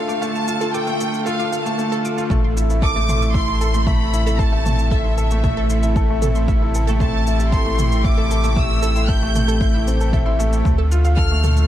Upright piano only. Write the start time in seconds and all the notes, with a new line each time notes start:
Already playing: A3 F4 A4
0.08 A3
0.21 A3
0.48 F4
0.61 F4
0.75 A4
0.87 A3
1.01 A3
1.27 F4
1.39 F4
1.52 A4
1.65 A3
1.78 A3
2.04 F4
2.17 F4
2.30 A3
2.57 E4
2.70 E4
2.83 A4
2.96 A3
3.10 A3
3.35 E4
3.48 E4
3.61 A4
3.74 A3
3.87 A3
4.13 E4
4.27 E4
4.39 A4
4.52 A3
4.65 A3
4.91 E4
5.04 E4
5.18 A4
5.31 A3
5.44 A3
5.70 E4
5.83 E4
5.97 A4
6.10 A3
6.23 A3
6.49 E4
6.62 E4
6.76 A4
6.89 A3
7.01 A3
7.27 E4
7.40 E4
7.53 A4
7.66 A3
7.79 A3
8.05 E4
8.18 E4
8.31 A4
8.44 A3
8.57 A3
8.84 E4
8.96 E4
9.09 A4
9.22 A3
9.35 A3
9.61 E4
9.75 E4
9.87 C4
10.01 A4
10.14 E5
10.26 E4
10.40 A3
10.53 E4
10.66 A3
10.92 F4
11.05 F5
11.18 A4
11.32 A3
11.44 A3